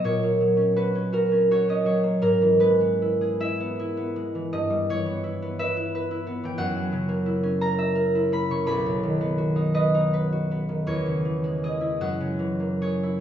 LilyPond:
<<
  \new Staff \with { instrumentName = "Harp" } { \time 6/8 \key fis \mixolydian \tempo 4. = 55 <cis'' fis''>4 b'8 ais'8 cis''16 dis''16 cis''8 | ais'8 b'4 e''4. | dis''8 cis''4 e''4~ e''16 g''16 | fis''4. ais''4 b''16 cis'''16 |
b''4. dis''4. | cis''4 dis''8 fis''4 cis''8 | }
  \new Staff \with { instrumentName = "Harp" } { \time 6/8 \key fis \mixolydian <ais, fis fis'>16 ais16 fis16 cis'16 fis'16 cis'16 fis'16 cis'16 fis'16 cis'16 fis16 ais16 | gis,16 e16 gis16 b16 e'16 gis'16 e'16 b16 e'16 b16 gis16 e16 | g,16 g16 e16 b16 e'16 b16 b'16 e'16 b'16 e'16 b16 e16 | fis,16 fis16 cis16 ais16 e'16 cis'16 ais'16 e''16 ais'16 e'16 ais16 cis16 |
b,,16 fis,16 dis16 b16 fis'16 dis'16 b'16 dis'16 b'16 fis'16 b16 dis16 | e,16 cis16 e16 gis16 gis'16 e'16 fis,16 cis16 e16 ais16 gis'16 e'16 | }
>>